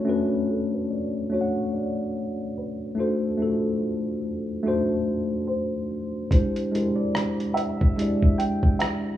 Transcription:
0.00 0.05 A3 medium
0.00 0.06 C#4 medium
0.00 0.07 D4 medium
0.00 0.08 F#4 medium
0.00 1.35 C#5 medium
0.05 0.86 A3 medium
0.05 0.87 C#4 medium
0.05 0.87 D4 medium
0.05 0.88 F#4 medium
0.09 0.89 B4 medium
0.49 0.71 A4 medium
0.73 0.91 B4 medium
0.90 1.33 D5 medium
1.30 2.40 A3 medium
1.30 2.41 D4 medium
1.30 2.42 F#4 medium
1.30 1.71 C#5 medium
1.35 1.41 C#5 soft
1.41 2.46 F#5 medium
1.73 2.59 D5 medium
2.58 2.96 B4 medium
2.95 3.26 A3 medium
2.95 3.26 D4 medium
2.95 3.27 D#4 medium
2.95 3.28 F#4 medium
2.95 3.78 A4 medium
3.00 3.28 C5 medium
3.37 4.19 A3 medium
3.37 4.20 D4 medium
3.37 4.20 D#4 soft
3.37 3.48 F4 soft
3.42 4.22 A4 medium
3.47 4.24 F#4 soft
4.63 5.73 A3 medium
4.63 5.74 D4 medium
4.63 5.75 D#4 medium
4.63 5.75 F#4 medium
4.68 5.76 C5 medium
5.47 6.29 C5 medium
6.31 6.60 G#3 medium
6.31 6.60 D4 medium
6.31 6.61 E4 medium
6.31 6.62 G4 medium
6.31 6.99 C5 medium
6.31 kick loud
6.31 closed hi-hat medium
6.36 6.62 C5 medium
6.56 closed hi-hat soft
6.71 7.53 G#3 medium
6.71 7.53 D4 soft
6.71 7.54 E4 medium
6.71 7.55 G4 medium
6.71 closed hi-hat medium
6.76 7.55 A#4 medium
6.96 7.58 D5 medium
7.15 cross-stick medium
7.15 closed hi-hat medium
7.40 closed hi-hat soft
7.54 8.41 E5 loud
7.54 closed hi-hat medium
7.81 kick medium
7.97 9.07 G#3 medium
7.97 9.08 D4 medium
7.97 9.08 E4 medium
7.97 9.09 G4 medium
7.97 closed hi-hat medium
8.02 9.10 D5 medium
8.23 kick medium
8.38 8.78 G5 medium
8.38 closed hi-hat medium
8.63 kick medium
8.79 8.89 E5 medium
8.79 cross-stick loud
8.79 closed hi-hat medium

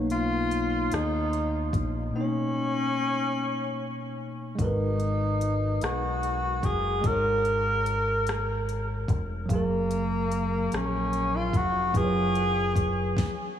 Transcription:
0.00 0.88 B1 medium
0.00 2.10 A#3 medium
0.00 2.08 B3 medium
0.00 2.12 D#4 medium
0.00 2.17 C#5 medium
0.10 0.95 F4 loud
0.10 closed hi-hat medium
0.51 closed hi-hat medium
0.92 1.70 D#2 medium
0.92 1.74 D#4 medium
0.92 cross-stick medium
0.92 closed hi-hat medium
1.33 closed hi-hat soft
1.73 2.10 A#1 medium
1.73 kick medium
1.73 closed hi-hat soft
2.11 4.53 B2 medium
2.11 4.55 A#3 medium
2.16 4.15 C#4 loud
2.16 4.57 D#4 medium
2.21 4.58 C#5 medium
4.55 6.98 G#3 medium
4.55 7.00 F#4 medium
4.55 kick loud
4.55 closed hi-hat medium
4.59 5.78 G#1 medium
4.59 5.85 D#4 medium
4.59 7.01 A#4 medium
4.65 7.03 B4 medium
5.00 closed hi-hat medium
5.41 closed hi-hat medium
5.81 6.60 B1 medium
5.81 6.67 F#4 medium
5.81 cross-stick medium
5.81 closed hi-hat medium
6.23 closed hi-hat soft
6.63 7.00 F#1 medium
6.63 7.08 G#4 medium
6.63 kick medium
6.63 closed hi-hat soft
7.01 9.05 G#1 medium
7.01 9.44 G#3 medium
7.01 9.45 F#4 medium
7.01 kick loud
7.01 closed hi-hat medium
7.06 9.09 A#4 loud
7.06 9.47 A#4 medium
7.11 9.48 C#5 medium
7.45 closed hi-hat soft
7.86 closed hi-hat medium
8.27 cross-stick medium
8.27 closed hi-hat medium
8.69 closed hi-hat soft
9.08 9.46 F1 medium
9.08 kick medium
9.08 closed hi-hat soft
9.46 11.88 F#3 medium
9.46 11.90 F5 medium
9.46 kick medium
9.50 10.68 F#1 medium
9.50 10.76 A#3 medium
9.50 11.91 G#4 medium
9.50 closed hi-hat medium
9.55 11.93 A#4 medium
9.91 closed hi-hat medium
10.32 closed hi-hat medium
10.72 11.54 A#1 medium
10.72 11.37 C#4 medium
10.72 cross-stick medium
10.72 closed hi-hat medium
11.13 closed hi-hat soft
11.36 11.58 F4 medium
11.53 11.90 F1 medium
11.53 11.99 F#4 medium
11.53 kick medium
11.53 closed hi-hat soft
11.93 13.13 F#1 medium
11.93 13.16 F#3 medium
11.93 13.17 F4 medium
11.93 13.17 G#4 medium
11.93 kick loud
11.93 closed hi-hat medium
11.97 13.59 G#4 loud
11.97 12.02 B4 medium
12.04 13.22 C#5 medium
12.35 closed hi-hat medium
12.76 kick medium
12.76 closed hi-hat medium
13.17 kick medium
13.17 snare medium

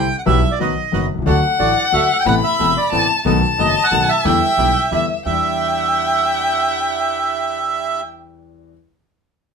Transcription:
0.00 0.16 G5 loud
0.18 0.22 F#5 medium
0.26 0.40 B1 medium
0.26 0.40 B1 loud
0.26 0.40 B2 loud
0.26 0.40 E3 medium
0.26 0.40 G3 medium
0.26 0.40 B3 medium
0.26 0.40 E4 medium
0.26 0.40 G4 medium
0.26 0.40 B4 medium
0.26 0.52 E5 loud
0.51 0.59 D5 medium
0.59 0.74 B1 medium
0.59 0.74 B2 medium
0.59 0.73 D#3 soft
0.59 0.73 F#3 soft
0.59 0.74 B3 soft
0.59 0.74 D#4 medium
0.59 0.74 F#4 medium
0.59 0.74 F#4 soft
0.59 0.74 B4 medium
0.59 1.06 D#5 medium
0.92 1.07 F#1 medium
0.92 1.07 F#2 medium
0.92 1.06 D#3 soft
0.92 1.07 F#3 soft
0.92 1.07 B3 soft
0.92 1.07 D#4 medium
0.92 1.07 F#4 soft
0.92 1.07 F#4 medium
0.92 1.07 B4 medium
1.14 1.18 B1 medium
1.14 1.17 B1 medium
1.14 1.21 C2 medium
1.18 1.22 C2 medium
1.18 1.25 C#2 medium
1.22 1.26 C#2 medium
1.22 1.40 D2 loud
1.22 1.40 D4 medium
1.22 1.40 F#4 medium
1.22 1.40 A4 medium
1.26 1.40 D2 medium
1.26 1.40 D3 medium
1.26 1.40 F#3 medium
1.26 1.40 A3 medium
1.26 1.41 F#4 medium
1.26 2.28 F#5 loud
1.59 1.74 A1 medium
1.59 1.74 A2 medium
1.59 1.73 D3 soft
1.59 1.73 F#3 soft
1.59 1.74 A3 soft
1.59 1.73 D4 medium
1.59 1.73 F#4 soft
1.59 1.74 F#4 medium
1.59 1.73 A4 medium
1.59 1.85 D5 medium
1.85 1.93 F#5 medium
1.92 2.07 D2 medium
1.92 2.07 D3 medium
1.92 2.07 F#3 soft
1.92 2.07 A3 soft
1.92 2.07 D4 medium
1.92 2.07 F#4 medium
1.92 2.07 F#4 soft
1.92 2.07 A4 medium
1.92 2.16 E5 medium
2.20 2.23 G5 loud
2.25 2.40 A1 loud
2.25 2.40 A1 medium
2.25 2.40 A2 medium
2.25 2.40 C3 medium
2.25 2.40 A3 medium
2.25 2.40 B3 medium
2.25 2.40 C4 medium
2.25 2.40 E4 medium
2.25 2.40 A4 medium
2.25 2.35 F#5 loud
2.25 2.92 B5 loud
2.44 2.74 E5 loud
2.59 2.73 E1 medium
2.59 2.74 E1 medium
2.59 2.74 E2 medium
2.59 2.73 C3 soft
2.59 2.74 A3 soft
2.59 2.73 B3 medium
2.59 2.74 B3 soft
2.59 2.73 C4 medium
2.59 2.74 E4 medium
2.59 2.73 A4 medium
2.77 3.08 D5 medium
2.91 3.06 A1 medium
2.91 3.06 A2 medium
2.91 3.06 C3 soft
2.91 3.06 A3 soft
2.91 3.06 B3 medium
2.91 3.06 B3 soft
2.91 3.06 C4 medium
2.91 3.06 E4 medium
2.91 3.06 A4 medium
2.91 3.23 A5 loud
3.25 3.39 B1 loud
3.25 3.40 B1 loud
3.25 3.40 B2 loud
3.25 3.40 D#3 medium
3.25 3.40 A3 medium
3.25 3.39 B3 medium
3.25 3.40 B3 medium
3.25 3.40 D#4 medium
3.25 3.40 F#4 medium
3.25 3.40 A4 loud
3.25 4.26 A5 loud
3.58 3.73 F#1 medium
3.58 3.73 F#2 medium
3.58 3.73 D#3 soft
3.58 3.73 A3 soft
3.58 3.73 B3 medium
3.58 3.73 B3 soft
3.58 3.73 D#4 medium
3.58 3.74 F#4 medium
3.58 3.73 A4 medium
3.58 3.85 D#5 medium
3.84 4.10 F#5 loud
3.91 4.06 B1 medium
3.91 4.06 B2 medium
3.91 4.06 D#3 medium
3.91 4.06 A3 soft
3.91 4.06 B3 medium
3.91 4.06 B3 soft
3.91 4.06 D#4 soft
3.91 4.06 F#4 medium
3.91 4.06 A4 medium
4.09 5.05 E5 loud
4.24 4.39 E2 loud
4.24 4.39 E2 medium
4.24 4.39 D3 medium
4.24 4.40 E3 medium
4.24 4.40 G3 medium
4.24 4.40 B3 medium
4.24 4.39 D4 medium
4.24 4.39 E4 medium
4.24 4.40 E4 medium
4.24 4.39 G4 medium
4.24 4.91 G5 loud
4.57 4.72 B1 medium
4.57 4.73 B1 medium
4.57 4.72 B2 medium
4.57 4.72 D3 soft
4.57 4.73 G3 soft
4.57 4.73 B3 soft
4.57 4.72 D4 medium
4.57 4.72 E4 medium
4.57 4.73 E4 medium
4.57 4.72 G4 medium
4.91 5.06 E2 medium
4.91 5.06 D3 soft
4.91 5.06 E3 medium
4.91 5.06 G3 soft
4.91 5.06 B3 soft
4.91 5.06 D4 medium
4.91 5.06 E4 medium
4.91 5.06 G4 medium
4.91 5.23 E5 medium
5.25 5.40 E2 medium
5.25 8.71 E2 medium
5.25 8.71 G3 medium
5.25 8.01 D4 medium
5.25 8.71 D4 medium
5.25 8.01 E4 medium
5.25 8.71 E4 medium
5.25 8.01 G4 medium
5.25 8.01 E5 loud
5.25 8.01 G5 medium

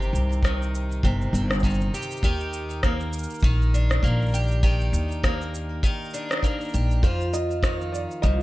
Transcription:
0.00 1.03 C3 medium
0.00 0.44 D#3 medium
0.00 1.33 C4 medium
0.00 1.94 G4 medium
0.00 shaker soft
0.13 0.99 C2 medium
0.13 shaker medium
0.32 shaker soft
0.43 1.64 D#3 medium
0.43 kick loud
0.43 cross-stick medium
0.43 shaker soft
0.62 shaker soft
0.75 shaker medium
0.92 shaker soft
1.03 1.28 G1 medium
1.03 2.31 C3 medium
1.03 kick medium
1.03 shaker soft
1.22 shaker soft
1.33 1.89 G1 medium
1.33 2.31 C4 medium
1.33 shaker medium
1.51 cross-stick medium
1.51 shaker soft
1.54 shaker soft
1.60 kick loud
1.60 shaker soft
1.64 2.23 D#3 medium
1.64 shaker soft
1.70 shaker soft
1.74 shaker soft
1.81 shaker soft
1.94 2.24 G4 medium
1.94 shaker medium
2.02 shaker soft
2.11 shaker soft
2.17 shaker soft
2.23 3.24 D#2 medium
2.23 3.43 D#3 medium
2.23 4.33 G4 medium
2.23 kick loud
2.23 shaker soft
2.40 shaker soft
2.53 shaker medium
2.70 shaker soft
2.83 4.02 A#3 medium
2.83 kick loud
2.83 cross-stick medium
2.83 shaker soft
3.00 shaker soft
3.13 shaker medium
3.19 shaker medium
3.23 shaker soft
3.30 shaker soft
3.34 shaker soft
3.40 3.99 A#1 medium
3.40 kick loud
3.40 shaker soft
3.44 4.63 D#3 medium
3.44 shaker soft
3.62 shaker soft
3.74 6.13 D4 medium
3.74 shaker medium
3.91 cross-stick medium
3.91 shaker soft
4.03 4.89 A#1 medium
4.03 5.23 A#3 medium
4.03 kick medium
4.03 shaker soft
4.22 shaker soft
4.26 shaker soft
4.28 shaker soft
4.31 4.63 G4 medium
4.31 shaker soft
4.34 shaker medium
4.38 shaker soft
4.43 shaker soft
4.47 shaker soft
4.51 shaker soft
4.63 5.83 D#3 medium
4.63 6.73 G4 medium
4.63 kick loud
4.63 shaker soft
4.81 shaker soft
4.93 5.79 D#2 medium
4.93 shaker medium
5.11 shaker soft
5.24 6.43 A#3 medium
5.24 kick loud
5.24 cross-stick medium
5.24 shaker soft
5.41 shaker soft
5.55 shaker medium
5.83 7.63 D#3 medium
5.83 kick loud
5.83 shaker soft
6.01 shaker soft
6.05 shaker soft
6.10 7.11 D4 medium
6.10 shaker soft
6.14 shaker medium
6.31 cross-stick medium
6.31 shaker soft
6.33 cross-stick medium
6.33 cross-stick soft
6.37 cross-stick soft
6.39 cross-stick soft
6.42 7.10 A#3 medium
6.42 kick medium
6.42 cross-stick soft
6.42 shaker soft
6.61 shaker soft
6.65 shaker soft
6.69 shaker soft
6.72 6.98 A#1 medium
6.72 7.04 G4 medium
6.72 shaker soft
6.74 shaker medium
6.91 shaker soft
7.03 8.04 F2 medium
7.03 8.22 F2 medium
7.03 8.43 F4 medium
7.03 7.35 C5 medium
7.03 kick loud
7.03 shaker soft
7.21 shaker soft
7.33 7.95 D#5 medium
7.33 shaker medium
7.51 shaker soft
7.63 8.43 D#3 medium
7.63 kick loud
7.63 cross-stick medium
7.63 shaker soft
7.81 shaker soft
7.92 7.99 D5 medium
7.92 shaker medium
8.11 shaker soft
8.22 8.43 C2 medium
8.22 8.43 F2 medium
8.22 8.43 D#5 loud
8.22 kick medium
8.22 shaker soft

